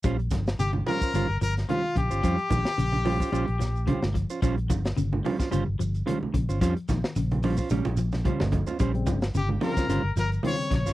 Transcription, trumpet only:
X:1
M:4/4
L:1/8
Q:"Swing 16ths" 1/4=110
K:Bbdor
V:1 name="Trumpet"
z2 G B2 B F G- | G6- G z | z8 | z8 |
z2 G B2 B d d |]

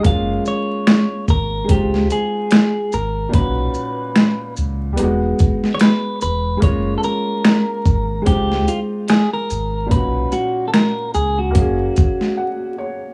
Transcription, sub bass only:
X:1
M:4/4
L:1/8
Q:"Swing 16ths" 1/4=73
K:F#
V:1 name="Sub bass" clef=bass
F,,, z2 G,,, C,, z2 G,,, | B,,, z2 C,, =E,,, z2 E,,, | F,,, z2 G,,, C,, z2 G,,, | B,,, z2 C,, F,,, z3 |]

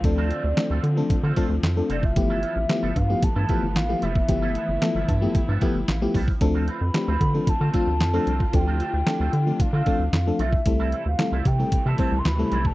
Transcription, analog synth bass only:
X:1
M:4/4
L:1/16
Q:1/4=113
K:Ddor
V:1 name="Analog synth bass" clef=bass
D,,3 D,, z D,, D,2 D, D, z D,, F,,2 F,,,2 | G,,,3 A,,, z G,,, G,,2 G,, G,, z G,,, A,,,2 F,,,2 | G,,,3 G,,, z G,,, G,,2 G,, G,, z G,,, A,,,2 C,,2 | D,,3 F,, z D,, D,2 D, D, z D,, F,,2 C,,2 |
D,,3 D,, z D,, D,2 D, D, z D,, F,,2 B,,,2 | C,,3 D,, z C,, C,2 C, C, z C,, D,,2 B,,,2 |]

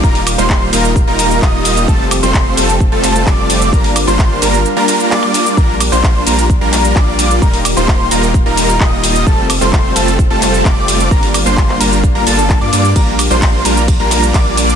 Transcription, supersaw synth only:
X:1
M:4/4
L:1/16
Q:1/4=130
K:Bb
V:1 name="Supersaw synth"
[G,B,EFB] z2 [G,B,EFc]3 [G,B,EFB] z2 [G,B,EFB]3 z4 | [G,A,CFA] z2 [G,A,CFc]3 [G,A,CFA] z2 [G,A,CFA]3 [G,CFd]4 | [G,B,DFB] z2 [G,B,DFc]3 [G,B,DFB] z2 [G,B,DFB]3 [G,B,DFd]4 | [G,B,DFB] z2 [G,B,DFc]3 [G,B,DFB] z2 [G,B,DFB]3 [G,B,DFd]4 |
[G,B,EFB] z2 [G,B,EFc]3 [G,B,EFB] z2 [G,B,EFB]3 [G,B,Ee]4 | [G,A,CFA] z2 [G,A,CFc]3 [G,A,CFA] z2 [G,A,CFA]3 [G,A,CFd]4 | [G,B,DF] z2 [G,B,DFc]3 [G,B,DFB] z2 [G,B,DFB] [G,B,DFA]3 [G,B,DFd] [G,B,DFd] z | [G,B,DFB] z2 [G,B,DFc]3 [G,B,DFB] z2 [G,B,DFB]3 [G,B,DF]4 |]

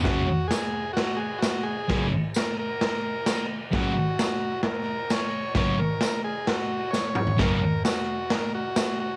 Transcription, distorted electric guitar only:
X:1
M:4/4
L:1/8
Q:1/4=131
K:F#
V:1 name="Distorted electric guitar" clef=bass
[F,,C,F,] z6 z | [F,,C,F,] z6 z | [F,,C,F,] z6 z | [F,,C,F,] z6 z |
[F,,C,F,] z6 z |]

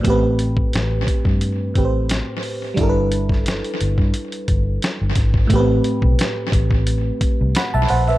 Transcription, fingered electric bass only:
X:1
M:4/4
L:1/16
Q:"Swing 16ths" 1/4=88
K:Am
V:1 name="Fingered electric bass" clef=bass
A,,,4 A,,,2 z G,,3 A,,,3 z3 | G,,,4- G,,, z G,,, G,, z2 G,,,2 z G,,, ^G,,,2 | A,,,2 z B,,, z2 A,,,4 z C,, z B,,, _B,,,2 |]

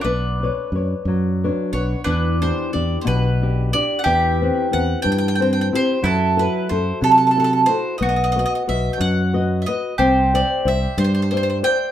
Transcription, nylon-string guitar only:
X:1
M:6/8
L:1/8
Q:3/8=61
K:Bm
V:1 name="Nylon-string guitar"
B, [Bcd] [Bcd] F, [DBc] [Bcf] | [K:Em] E, [DEG] [DEG] B,, [DEG] [DEG] | E, [CEB] [CEB] E, [CEc] [CEG] | F, [EFA] [EFA] F, [EFA] [EFA] |
B, [FB^d] [FBd] F, [FBd] [FBd] | C [cde] [cde] G, [cde] [cde] |]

